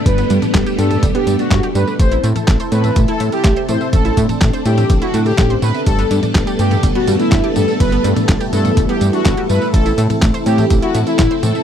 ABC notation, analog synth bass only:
X:1
M:4/4
L:1/8
Q:1/4=124
K:Ador
V:1 name="Analog synth bass" clef=bass
G,,, G,, G,,, G,, G,,, G,, G,,, G,, | A,,, A,, A,,, A,, A,,, A,, A,,, A,, | A,,, A,, A,,, A,, A,,, A,, A,,, A,, | G,,, G,, G,,, G,, G,,, G,, G,,, G,, |
G,,, G,, G,,, G,, G,,, G,, G,,, G,, | A,,, A,, A,,, A,, A,,, A,, A,,, A,, |]